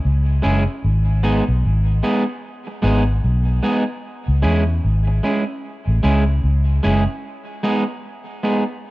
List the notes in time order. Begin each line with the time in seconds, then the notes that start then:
0.05 C#2
0.42 F#1 G#3 C#4 E4 G#4
0.84 G#1
1.23 G#3 B3 D#4 G#4
1.49 B1
1.65 G#1
2.03 G#3 B3 D#4 G#4
2.67 muted clean electric guitar stroke
2.82 G#1 G#3 B3 D#4 G#4
3.24 B1
3.63 G#3 B3 D#4 G#4
4.28 C#2
4.42 E2 G#3 C#4 E4 G#4
4.84 G#1
5.07 muted clean electric guitar stroke
5.23 G#3 C#4 E4 G#4
5.87 A1
6.03 C#2 G#3 C#4 E4 G#4
6.44 C#2
6.83 F#1 G#3 C#4 E4 G#4
7.63 G#3 B3 D#4 G#4
8.43 G#3 B3 D#4 G#4